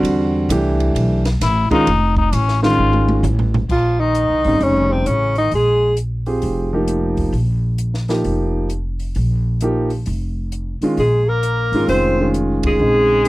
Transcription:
Already playing: grand piano D3 G3 C4 F#4
0.03 upright bass E2, ride
0.49 upright bass C2, grand piano E3 A3 D4 G4, hi-hat pedal, ride
0.80 ride
0.95 upright bass B1, ride
1.25 snare, ride
1.41 upright bass A1, trombone E4, snare, hi-hat pedal, ride
1.70 grand piano D#3 G#3 C#4 F4, trombone D#4, muted upright bass stroke, kick, ride
1.87 upright bass F1, ride
2.17 trombone D#4, kick
2.32 upright bass A1, trombone C#4, hi-hat pedal, ride
2.48 snare
2.63 grand piano D#3 G#3 C#4 F4, trombone F4, snare
2.78 upright bass G#1
2.93 high tom
3.08 high tom
3.23 upright bass A1, floor tom, hi-hat pedal
3.39 floor tom
3.54 floor tom
3.69 upright bass A#1, trombone F3, alto saxophone F4, kick, crash
4.00 trombone D#3, alto saxophone D#4
4.15 closed hi-hat
4.30 upright bass C2
4.44 upright bass G#1, grand piano C#3 G3 C4 D#4, open hi-hat
4.60 upright bass F1, trombone C#3, alto saxophone C#4, open hi-hat
4.91 trombone C3, alto saxophone C4
5.06 upright bass A1, trombone C#3, alto saxophone C#4, closed hi-hat
5.35 trombone D#3, alto saxophone D#4, open hi-hat
5.51 upright bass A#1, trombone G#3, alto saxophone G#4, open hi-hat
5.97 closed hi-hat
6.26 grand piano C4 F4 G4 G#4, open hi-hat
6.42 upright bass F1, open hi-hat
6.73 grand piano F3 A#3 D#4 G4
6.88 closed hi-hat
7.17 kick, open hi-hat
7.32 upright bass A#1, open hi-hat
7.78 closed hi-hat
7.94 snare
8.08 grand piano F3 A#3 D#4 G4, snare, open hi-hat
8.24 upright bass F1, open hi-hat
8.70 closed hi-hat
9.00 open hi-hat
9.15 upright bass A#1, open hi-hat
9.61 grand piano F3 A#3 D#4 G4, closed hi-hat
9.90 open hi-hat
10.06 upright bass F1, open hi-hat
10.52 closed hi-hat
10.81 grand piano D#3 G#3 C#4 F4, muted upright bass stroke, open hi-hat
10.97 upright bass A#1, trombone G#3, alto saxophone G#4, open hi-hat
11.27 trombone A#3, alto saxophone A#4
11.43 closed hi-hat
11.72 upright bass G#1, grand piano D#3 G#3 C#4 F4, open hi-hat
11.87 upright bass F1, trombone C4, alto saxophone C5, open hi-hat
12.20 grand piano D#3 G#3 C#4 F4
12.34 closed hi-hat
12.63 trombone G#3, alto saxophone G#4, kick, ride
12.79 upright bass A#1, grand piano C#3 G#3 C4 D#4
13.25 grand piano D#3, closed hi-hat

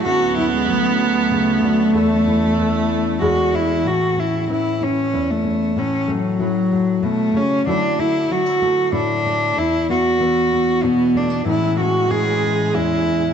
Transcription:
0.05 analog synth pad D2 F#3 C#4 F#4, nylon-string guitar D3 C#4, viola B3, cello F#4
0.37 nylon-string guitar C#4, cello E4
0.54 cello G#3
0.68 nylon-string guitar F#3, cello A3
1.31 nylon-string guitar C#3
1.63 nylon-string guitar D3
1.93 analog synth pad E2 E3 A4, nylon-string guitar E2 A4, viola A3
2.27 nylon-string guitar E4
2.58 nylon-string guitar E3
3.20 nylon-string guitar E2 G#4, analog synth pad E3 B3 G#4, viola G#3, cello F#4
3.54 nylon-string guitar E4, cello E4
3.84 nylon-string guitar A2, cello F#4
4.17 nylon-string guitar C#4, cello E4
4.49 nylon-string guitar E3 C#4, cello E4
4.81 nylon-string guitar C#4, cello C#4
5.13 nylon-string guitar E2 E4
5.31 cello A3
5.45 nylon-string guitar C#4
5.76 nylon-string guitar A2, cello C#4
6.08 cello F#3, nylon-string guitar A3
6.40 nylon-string guitar F#3 E4
6.73 nylon-string guitar A3
7.03 nylon-string guitar B2, cello A3
7.34 nylon-string guitar C#3, cello C#4
7.66 nylon-string guitar D3 F#3 A3 E4 F#4, cello D4
7.99 nylon-string guitar A3, cello E4
8.30 nylon-string guitar F#3 C#4, cello F#4
8.46 nylon-string guitar E4
8.62 nylon-string guitar A3
8.92 nylon-string guitar A2 E4, cello D4
9.26 nylon-string guitar A3
9.57 nylon-string guitar E2, cello E4
9.89 nylon-string guitar B3, cello F#4
10.20 nylon-string guitar E3 B3
10.54 nylon-string guitar B3
10.83 nylon-string guitar B2 F#4, cello B3
11.15 nylon-string guitar A3, cello D4
11.30 nylon-string guitar B3
11.45 nylon-string guitar A2 E3 C#4, analog synth pad A2 E3 C#4 G#5, viola G#3, cello E4
11.80 nylon-string guitar C#4, cello F#4
12.10 nylon-string guitar E3 E4, cello G#4
12.43 nylon-string guitar C#4
12.73 nylon-string guitar E2 C#4, cello E4
13.07 nylon-string guitar C#4

